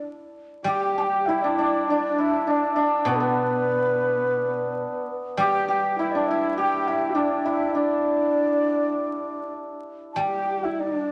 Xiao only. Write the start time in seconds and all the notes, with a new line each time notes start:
0.67 G5
0.97 A5
1.02 G5
1.26 E5
1.42 D5
1.58 D5
1.88 D5
2.21 E5
2.50 D5
2.73 E5
2.81 D5
3.09 B4
3.16 A4
3.23 B4
5.40 G5
5.69 G5
5.99 E5
6.12 D5
6.28 E5
6.58 G5
6.87 E5
7.15 D5
7.45 E5
7.76 D5
10.13 A5
10.20 G5
10.63 E5
10.80 D5